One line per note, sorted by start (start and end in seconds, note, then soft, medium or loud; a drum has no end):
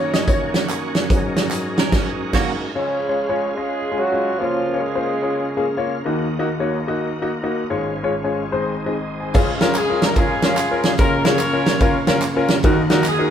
0.00 1.06 F#2 medium
0.00 1.07 D#3 medium
0.00 1.06 A#3 medium
0.00 1.07 A#3 medium
0.00 2.70 C#4 medium
0.00 2.70 D#4 medium
0.00 2.70 F#4 medium
0.00 0.12 C#5 loud
0.00 1.08 C#5 medium
0.14 0.27 D#5 medium
0.14 snare loud
0.14 closed hi-hat medium
0.14 tambourine medium
0.28 1.32 C#5 medium
0.28 kick loud
0.28 closed hi-hat medium
0.28 tambourine medium
0.54 snare loud
0.54 closed hi-hat medium
0.54 tambourine soft
0.69 clap loud
0.69 closed hi-hat loud
0.69 tambourine loud
0.95 snare loud
0.95 closed hi-hat medium
0.95 tambourine medium
1.08 2.70 G#2 medium
1.08 2.71 F#3 soft
1.08 2.72 G#3 medium
1.08 2.71 C#4 medium
1.08 2.72 A#4 medium
1.08 kick loud
1.08 closed hi-hat medium
1.08 tambourine medium
1.36 snare loud
1.36 closed hi-hat medium
1.36 tambourine medium
1.51 clap medium
1.51 closed hi-hat loud
1.51 tambourine medium
1.77 1.93 C#4 medium
1.77 1.93 A#4 medium
1.77 snare loud
1.77 closed hi-hat medium
1.77 tambourine medium
1.92 kick loud
1.92 snare loud
1.92 crash medium
2.33 2.52 A#3 loud
2.33 2.52 F#4 medium
2.33 kick loud
2.33 snare loud
2.33 crash medium
2.74 4.36 C#2 soft
2.74 4.36 C#3 soft
2.74 3.57 C#3 medium
2.74 3.53 F3 medium
2.74 3.53 G#3 medium
2.74 2.96 G#3 medium
2.74 4.39 G#3 medium
2.74 3.53 C#4 medium
2.74 4.38 C#4 soft
2.74 2.96 C#4 medium
2.74 2.96 F4 soft
2.74 2.96 C#5 medium
2.74 6.02 F5 medium
3.09 3.17 G#3 medium
3.09 3.17 C#4 medium
3.09 3.17 F4 medium
3.09 3.17 C#5 medium
3.29 3.47 G#3 medium
3.29 3.46 C#4 medium
3.29 3.47 F4 medium
3.29 3.47 C#5 medium
3.55 4.00 G#3 medium
3.55 3.78 G#3 medium
3.55 3.98 C#4 medium
3.55 3.78 C#4 medium
3.55 4.36 F4 medium
3.55 3.78 F4 medium
3.55 3.99 G#4 medium
3.55 3.78 D#5 medium
3.92 3.99 G#3 medium
3.92 3.99 C#4 medium
3.92 3.99 F4 medium
3.92 3.99 G#4 medium
3.98 4.41 F#3 medium
3.98 4.37 C#4 medium
3.98 4.40 F#4 medium
4.12 4.29 G#3 medium
4.12 4.29 C#4 medium
4.12 4.29 F4 medium
4.12 4.29 D#5 medium
4.39 6.02 C#2 soft
4.39 6.03 C#3 medium
4.39 6.02 C#3 medium
4.39 4.82 F3 medium
4.39 4.61 A#3 medium
4.39 7.67 A#3 medium
4.39 5.19 A#3 medium
4.39 6.03 C#4 medium
4.39 4.61 C#4 medium
4.39 4.82 C#4 medium
4.39 4.81 F4 medium
4.39 4.61 F4 medium
4.39 4.61 C#5 medium
4.74 4.82 A#3 medium
4.74 4.82 C#4 medium
4.74 4.82 F4 medium
4.74 4.82 C#5 medium
4.81 5.90 G#3 medium
4.81 5.87 C#4 medium
4.81 5.87 F4 medium
4.81 5.91 G#4 medium
4.95 5.12 A#3 medium
4.95 5.12 C#4 medium
4.95 5.12 F4 medium
4.95 5.12 C5 medium
5.22 5.43 A#3 medium
5.22 5.43 C#4 medium
5.22 5.43 F4 medium
5.22 5.43 C#5 medium
5.57 5.64 A#3 medium
5.57 5.65 C#4 medium
5.57 5.65 F4 medium
5.57 5.65 G#4 medium
5.77 5.95 A#3 medium
5.77 5.94 C#4 medium
5.77 5.94 F4 medium
5.77 5.95 C#5 medium
6.04 7.67 D#2 medium
6.04 7.67 D#3 medium
6.04 6.26 A#3 medium
6.04 7.69 D#4 medium
6.04 6.26 D#4 medium
6.04 7.68 F#4 medium
6.04 6.26 F#4 medium
6.04 6.26 D#5 medium
6.39 6.47 A#3 medium
6.39 6.47 D#4 medium
6.39 6.47 F#4 medium
6.39 6.47 D#5 medium
6.60 6.77 A#3 medium
6.60 6.77 D#4 medium
6.60 6.77 F#4 medium
6.60 6.77 C#5 medium
6.87 7.08 A#3 medium
6.87 7.08 D#4 medium
6.87 7.09 F#4 medium
6.87 7.09 D#5 medium
7.22 7.30 A#3 medium
7.22 7.30 D#4 medium
7.22 7.30 F#4 medium
7.22 7.30 D#5 medium
7.43 7.60 A#3 medium
7.43 7.60 D#4 medium
7.43 7.60 F#4 medium
7.43 7.60 D#5 medium
7.70 8.49 G#1 medium
7.70 8.49 G#2 medium
7.70 7.91 G#3 medium
7.70 9.34 G#3 medium
7.70 8.52 C#4 medium
7.70 7.91 C#4 medium
7.70 8.52 F4 medium
7.70 7.91 F4 medium
7.70 7.91 C#5 medium
8.03 8.12 G#3 medium
8.03 8.12 C#4 medium
8.03 8.12 F4 medium
8.03 8.12 C#5 medium
8.24 8.42 G#3 medium
8.24 8.42 C#4 medium
8.24 8.42 F4 medium
8.24 8.42 C#5 medium
8.52 9.31 G#1 medium
8.52 9.31 G#2 medium
8.52 8.73 G#3 medium
8.52 8.73 C4 medium
8.52 9.35 C4 soft
8.52 8.73 D#4 medium
8.52 9.35 D#4 medium
8.52 8.73 C5 medium
8.86 8.94 G#3 medium
8.86 8.94 C4 medium
8.86 8.94 D#4 medium
8.86 8.92 D#5 medium
8.94 9.19 D#5 medium
9.20 9.60 G#5 medium
9.34 10.95 C#2 medium
9.34 10.95 C#3 medium
9.34 10.98 G#3 medium
9.34 9.49 C#4 medium
9.34 12.61 C#4 medium
9.34 9.49 F4 medium
9.34 10.98 F4 medium
9.34 9.49 G#4 medium
9.34 kick loud
9.34 crash medium
9.34 tambourine medium
9.61 9.73 C#4 medium
9.61 9.73 F4 medium
9.61 9.73 A#4 loud
9.61 snare loud
9.61 ride medium
9.61 tambourine soft
9.75 10.02 G#4 medium
9.75 clap loud
9.75 ride medium
9.75 tambourine loud
9.90 10.07 C#4 medium
9.90 10.07 F4 medium
9.90 10.07 A#4 medium
10.02 10.18 A#4 medium
10.02 snare loud
10.02 ride medium
10.02 tambourine medium
10.16 10.41 C#4 medium
10.16 10.32 C#4 medium
10.16 10.42 F4 medium
10.16 10.32 F4 medium
10.16 10.42 G#4 loud
10.16 10.32 A#4 medium
10.16 kick loud
10.16 ride medium
10.16 tambourine medium
10.42 10.95 C#4 medium
10.42 10.55 C#4 medium
10.42 10.55 F4 medium
10.42 10.95 F4 medium
10.42 10.82 G#4 loud
10.42 10.55 A#4 medium
10.42 snare loud
10.42 ride medium
10.42 tambourine soft
10.57 clap loud
10.57 ride medium
10.57 tambourine loud
10.71 10.89 C#4 medium
10.71 10.89 F4 medium
10.71 10.89 A#4 medium
10.83 10.91 G#4 medium
10.83 snare loud
10.83 ride medium
10.83 tambourine medium
10.98 12.60 C#2 medium
10.98 12.59 C#3 medium
10.98 12.63 C#3 medium
10.98 12.62 A#3 medium
10.98 11.77 C#4 medium
10.98 11.13 C#4 medium
10.98 11.24 F4 medium
10.98 11.13 F4 medium
10.98 12.63 F4 medium
10.98 11.24 A#4 loud
10.98 11.13 A#4 medium
10.98 kick loud
10.98 ride medium
10.98 tambourine loud
11.24 11.37 C#4 medium
11.24 11.37 F4 medium
11.24 12.04 F4 medium
11.24 11.37 G#4 medium
11.24 12.04 A#4 medium
11.24 12.08 C#5 loud
11.24 snare loud
11.24 ride medium
11.24 tambourine medium
11.39 clap loud
11.39 ride medium
11.39 tambourine loud
11.53 11.71 C#4 medium
11.53 11.71 F4 medium
11.53 11.71 A#4 medium
11.66 snare loud
11.66 ride medium
11.66 tambourine medium
11.80 11.95 C#4 medium
11.80 11.95 F4 medium
11.80 11.95 A#4 loud
11.80 kick loud
11.80 ride medium
11.80 tambourine medium
12.07 12.19 C#4 medium
12.07 12.19 F4 medium
12.07 12.20 A#4 loud
12.07 snare loud
12.07 ride medium
12.07 tambourine soft
12.22 clap loud
12.22 ride medium
12.22 tambourine loud
12.36 12.54 C#4 medium
12.36 12.53 F4 medium
12.36 12.54 A#4 loud
12.48 snare loud
12.48 ride medium
12.48 tambourine medium
12.63 13.30 D#2 medium
12.63 13.30 D#3 medium
12.63 13.30 A#3 medium
12.63 13.30 D#4 medium
12.63 12.78 D#4 medium
12.63 13.30 F#4 medium
12.63 12.78 F#4 medium
12.63 12.78 A#4 medium
12.63 kick loud
12.63 ride medium
12.63 tambourine medium
12.90 13.02 D#4 loud
12.90 13.02 F#4 medium
12.90 13.02 A#4 loud
12.90 snare loud
12.90 ride medium
12.90 tambourine medium
13.04 clap loud
13.04 ride medium
13.04 tambourine loud
13.08 13.30 G#4 medium
13.19 13.30 D#4 medium
13.19 13.30 F#4 medium
13.19 13.30 A#4 medium